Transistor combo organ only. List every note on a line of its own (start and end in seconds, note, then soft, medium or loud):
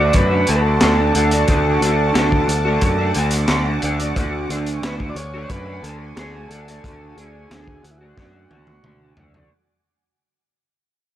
0.00 0.17 D5 medium
0.16 0.50 B4 medium
0.49 0.56 A4 medium
0.55 0.63 B4 medium
0.61 1.14 A4 medium
1.15 3.13 A4 medium
4.84 4.96 B4 loud
5.10 5.17 D5 medium
5.17 5.43 C#5 loud
5.44 5.51 C#5 medium
5.50 5.85 B4 loud
5.83 5.98 A4 medium
6.16 6.51 G#4 medium
6.48 7.19 A4 medium
7.15 7.85 G#4 medium
7.83 7.90 F#4 medium
7.91 7.98 E4 medium
7.98 9.14 F#4 medium